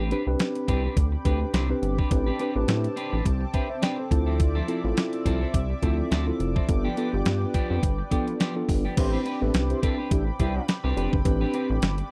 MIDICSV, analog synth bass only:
0, 0, Header, 1, 2, 480
1, 0, Start_track
1, 0, Key_signature, 0, "minor"
1, 0, Tempo, 571429
1, 1775, Time_signature, 4, 2, 24, 8
1, 10172, End_track
2, 0, Start_track
2, 0, Title_t, "Analog synth bass"
2, 0, Program_c, 0, 38
2, 0, Note_on_c, 0, 33, 105
2, 112, Note_off_c, 0, 33, 0
2, 226, Note_on_c, 0, 36, 82
2, 300, Note_off_c, 0, 36, 0
2, 573, Note_on_c, 0, 36, 87
2, 739, Note_off_c, 0, 36, 0
2, 811, Note_on_c, 0, 38, 100
2, 978, Note_off_c, 0, 38, 0
2, 1051, Note_on_c, 0, 38, 100
2, 1218, Note_off_c, 0, 38, 0
2, 1291, Note_on_c, 0, 36, 98
2, 1458, Note_off_c, 0, 36, 0
2, 1531, Note_on_c, 0, 31, 100
2, 1698, Note_off_c, 0, 31, 0
2, 1771, Note_on_c, 0, 33, 118
2, 1938, Note_off_c, 0, 33, 0
2, 2147, Note_on_c, 0, 33, 96
2, 2221, Note_off_c, 0, 33, 0
2, 2251, Note_on_c, 0, 45, 105
2, 2418, Note_off_c, 0, 45, 0
2, 2628, Note_on_c, 0, 33, 91
2, 2701, Note_off_c, 0, 33, 0
2, 2734, Note_on_c, 0, 36, 94
2, 2900, Note_off_c, 0, 36, 0
2, 3452, Note_on_c, 0, 38, 91
2, 3876, Note_off_c, 0, 38, 0
2, 4067, Note_on_c, 0, 33, 92
2, 4141, Note_off_c, 0, 33, 0
2, 4415, Note_on_c, 0, 36, 88
2, 4580, Note_off_c, 0, 36, 0
2, 4653, Note_on_c, 0, 36, 93
2, 4819, Note_off_c, 0, 36, 0
2, 4894, Note_on_c, 0, 38, 96
2, 5060, Note_off_c, 0, 38, 0
2, 5136, Note_on_c, 0, 38, 94
2, 5301, Note_off_c, 0, 38, 0
2, 5375, Note_on_c, 0, 29, 98
2, 5540, Note_off_c, 0, 29, 0
2, 5616, Note_on_c, 0, 31, 111
2, 5781, Note_off_c, 0, 31, 0
2, 5993, Note_on_c, 0, 31, 103
2, 6065, Note_off_c, 0, 31, 0
2, 6097, Note_on_c, 0, 43, 105
2, 6262, Note_off_c, 0, 43, 0
2, 6473, Note_on_c, 0, 41, 92
2, 6545, Note_off_c, 0, 41, 0
2, 6576, Note_on_c, 0, 31, 84
2, 6741, Note_off_c, 0, 31, 0
2, 7296, Note_on_c, 0, 31, 90
2, 7461, Note_off_c, 0, 31, 0
2, 7538, Note_on_c, 0, 33, 117
2, 7702, Note_off_c, 0, 33, 0
2, 7914, Note_on_c, 0, 33, 95
2, 7985, Note_off_c, 0, 33, 0
2, 8015, Note_on_c, 0, 36, 97
2, 8181, Note_off_c, 0, 36, 0
2, 8494, Note_on_c, 0, 33, 96
2, 8659, Note_off_c, 0, 33, 0
2, 8732, Note_on_c, 0, 36, 87
2, 8899, Note_off_c, 0, 36, 0
2, 9107, Note_on_c, 0, 36, 101
2, 9180, Note_off_c, 0, 36, 0
2, 9210, Note_on_c, 0, 29, 91
2, 9304, Note_off_c, 0, 29, 0
2, 9349, Note_on_c, 0, 31, 88
2, 9422, Note_off_c, 0, 31, 0
2, 9452, Note_on_c, 0, 33, 121
2, 9619, Note_off_c, 0, 33, 0
2, 9827, Note_on_c, 0, 33, 100
2, 9900, Note_off_c, 0, 33, 0
2, 9931, Note_on_c, 0, 31, 98
2, 10098, Note_off_c, 0, 31, 0
2, 10172, End_track
0, 0, End_of_file